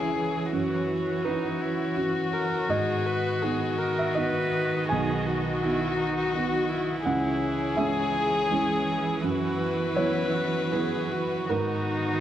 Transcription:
Already playing: felt piano C#2 C#4 E4 G#4 D#5 E5, cello E3, string section E3 G#4 C#5, viola E4, violin G#4
0.17 viola G#4
0.51 felt piano F#2, violin F#4, viola F#4, string section F#4
1.25 felt piano C#4 E4 F#4 B4, viola D#4
1.61 viola E4
1.97 felt piano C#4 E4 F#4, viola F#4
2.33 viola A#4
2.69 felt piano G#2 D#5, cello D#3, string section B3 D#5, viola G#4
3.06 viola B4
3.42 felt piano B3 D#4 F#4, viola G#4
3.78 viola A#4
3.99 felt piano E5
4.14 felt piano B3 D#4 F#4 D#5, viola B4
4.88 string section F#4, violin F#4, viola G#4, felt piano G#5
4.92 felt piano B1
5.26 viola F#4
5.62 felt piano B3 D#4 F#4, viola E4
5.98 viola D#4
6.33 felt piano B3 D#4 F#4, viola F#4
6.69 viola E4
7.04 felt piano C#2 F#5, cello E3, string section E4 G#4 C#5, violin G#4
7.76 felt piano G#3 C#4 E4 E5, viola G#4
8.51 felt piano G#3 C#4 E4
9.24 felt piano F#2, string section B3 F#4, viola F#4, violin B4
9.97 felt piano F#3 B3 E4 C#5, viola E4
10.34 viola F#4
10.72 felt piano F#3 B3 E4 B4, viola G#4
11.11 viola F#4
11.50 felt piano G#2 A#4, cello D#3, viola D#4, string section D#4, violin F#4

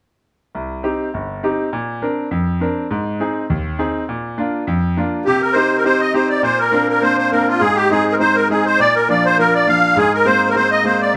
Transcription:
0.55 grand piano C2
0.83 grand piano C4 D#4 G4
1.14 grand piano G1
1.43 grand piano C4 D#4 G4
1.73 grand piano A#2
2.02 grand piano C4 D4 A#4
2.31 grand piano F2
2.61 grand piano C4 D4 A#4
2.91 grand piano G#2
3.20 grand piano C4 D#4 G#4
3.50 grand piano D#2
3.79 grand piano C4 D#4 G#4
4.09 grand piano A#2
4.38 grand piano A#3 D4 F4
4.67 grand piano F2
4.97 grand piano A#3 D4 F4
5.25 grand piano C3, accordion G4
5.41 accordion A#4
5.53 grand piano C4 D#4 G4, accordion C5
5.76 accordion A#4
5.84 grand piano C4 D#4 G4, accordion C5
6.01 accordion D#5
6.14 grand piano C4 D#4 G4, accordion C5
6.29 accordion D5
6.43 grand piano A#2, accordion C5
6.59 accordion A#4
6.72 grand piano A#3 C4 D4
6.89 accordion A#4
7.02 grand piano A#3 C4 D4, accordion C5
7.18 accordion C5
7.31 grand piano A#3 C4 D4, accordion A#4
7.48 accordion F4
7.60 grand piano G#2, accordion G#4
7.75 accordion G4
7.90 grand piano G#3 C4 D#4, accordion G#4
8.12 accordion A#4
8.20 grand piano G#3 C4 D#4, accordion C5
8.35 accordion A#4
8.50 grand piano G#3 C4 D#4, accordion G#4
8.66 accordion C5
8.80 grand piano A#2, accordion D5
8.95 accordion A#4
9.09 grand piano F3 A#3 D4, accordion D5
9.25 accordion C5
9.38 grand piano F3 A#3 D4, accordion A#4
9.55 accordion D5
9.67 grand piano F3 A#3 D4, accordion F5
9.96 grand piano G#2, accordion G#4
10.14 accordion A#4
10.25 grand piano G#3 A#3 C4, accordion C5
10.49 accordion A#4
10.55 grand piano G#3 A#3 C4, accordion C5
10.71 accordion D#5
10.84 grand piano G#3 A#3 C4, accordion C5
11.01 accordion D5

